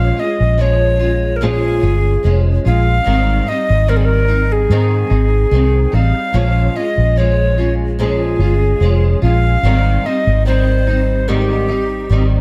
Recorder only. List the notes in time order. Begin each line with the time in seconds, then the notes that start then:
Already playing: F5
0.20 D#5
0.61 C#5
1.36 A#4
1.43 G#4
2.67 F5
3.48 D#5
3.89 A#4
3.97 G#4
4.05 A#4
4.52 G#4
5.94 F5
6.76 D#5
7.18 C#5
8.00 G#4
9.23 F5
10.06 D#5
10.46 C5
11.29 G4